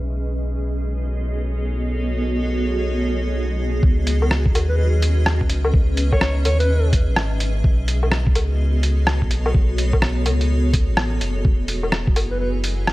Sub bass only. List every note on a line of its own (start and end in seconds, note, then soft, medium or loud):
0.02 3.81 B1 medium
3.83 4.56 C#2 medium
4.54 5.48 D#2 medium
5.49 5.72 C#2 medium
5.74 6.46 C#2 loud
6.45 7.09 D#2 medium
7.07 7.63 G#1 loud
7.64 8.37 B1 loud
8.35 9.29 C#2 medium
9.30 9.53 B1 medium
9.54 10.27 B1 loud
10.25 10.90 C#2 medium
10.88 10.97 F#1 loud
10.97 11.20 A1 medium
11.21 11.43 F#1 loud
11.45 12.17 E1 loud
12.16 12.93 F#1 loud